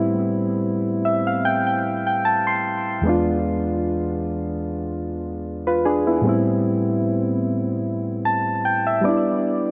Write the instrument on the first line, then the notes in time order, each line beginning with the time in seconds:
synth keys
Already playing: A2 G3 B3 C4 E4
1.05 E5
1.27 F5
1.45 G5
1.67 G5
2.07 G5
2.25 A5
2.47 C6
3.02 E2 G#3 B3
3.07 D4 F4
5.67 F4 B4
5.85 D4 G#4
6.07 B3 E4
6.22 A2 G3 B3
6.27 C4 E4
8.25 A5
8.65 G5
8.87 E5
9.01 G3 B3 D5
9.06 D4 E4